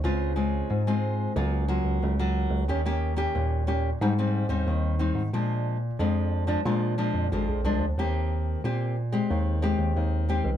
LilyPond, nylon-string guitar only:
\new Staff \with { instrumentName = "Nylon-string guitar" } { \time 4/4 \key ees \major \tempo 4 = 91 << { <aes c' f'>8 <aes c' f'>8. <aes c' f'>8. <ges bes f'>8 <ges bes f'>8. <ges bes f'>8. | <bes des' g'>16 <bes des' g'>8 <bes des' g'>8. <bes des' g'>16 r16 <g c' ees'>16 <g c' ees'>8 <g c' ees'>8. <g c' ees'>16 r16 | <f aes d'>8. r16 <f aes d'>8. <f aes d'>16 <f aes d'>8 <f aes d'>8 <f aes d'>8 <f aes d'>16 r16 | <bes c' g'>4 <bes c' g'>8 r16 <aes c' g'>8. <aes c' g'>4 <aes c' g'>16 r16 | } \\ { des4 aes,4 des4 des4 | ees4 bes,4 aes,4 ees4 | bes,4 f,4 bes,4 f,4 | ees4 bes,4 ees4 ees4 | } >> }